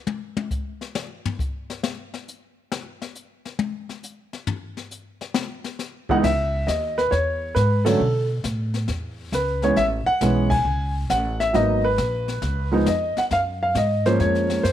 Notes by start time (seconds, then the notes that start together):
0.07 high tom
0.37 high tom
0.51 kick, hi-hat pedal
0.81 snare
0.95 snare
1.25 floor tom
1.39 kick, hi-hat pedal
1.70 snare
1.84 snare
2.14 snare
2.28 hi-hat pedal
2.72 snare
3.02 snare
3.15 hi-hat pedal
3.45 snare
3.59 high tom
3.89 snare
4.03 hi-hat pedal
4.33 snare
4.47 floor tom
4.77 snare
4.91 hi-hat pedal
5.21 snare
5.34 snare
5.64 snare
5.79 snare, hi-hat pedal
6.09 C#2 E3 G#3 B3 D#4 F#5, kick
6.23 C#2 E5, brush sweep, kick, snare, crash
6.67 D#2 D#5, kick, snare, hi-hat pedal
6.98 B4, snare
7.11 E2 C#5, brush sweep, kick, snare
7.55 G#2 B4, kick, snare, hi-hat pedal
7.85 D3 F#3 A3 C#4 A4, snare, ride
8.00 B2, brush sweep
8.44 A2, kick, snare, hi-hat pedal
8.74 snare
8.88 E2, brush sweep, kick, snare
9.32 C#2 B4, kick, snare, hi-hat pedal
9.62 E3 G#3 B3 C#4 C#5, snare
9.76 A1 E5, brush sweep, kick, snare
10.06 F#5, muted upright bass stroke
10.21 B1 E3 G#3 B3 C#4, kick, snare, hi-hat pedal
10.50 G#5, kick, crash
10.65 C#2, brush sweep
11.10 A1 F#5, kick, snare, hi-hat pedal
11.40 E5, snare
11.53 G#1 F#3 A#3 B3 D#4 D#5, brush sweep, kick, snare
11.84 B4
11.98 A#1, kick, snare, hi-hat pedal
12.28 snare
12.42 C#2, brush sweep, kick, snare
12.72 F3 G#3 B3 D#4
12.86 F2 D#5, kick, snare, hi-hat pedal
13.17 F#5, muted upright bass stroke, snare
13.31 F#2 F5, brush sweep, kick, snare
13.63 F5
13.75 G#2 D#5, kick, snare, hi-hat pedal
14.06 F3 G#3 A#3 C#4 C5, snare
14.20 F2 C#5, brush sweep, kick, snare
14.35 snare
14.50 snare
14.63 F#2 C5, kick, snare, hi-hat pedal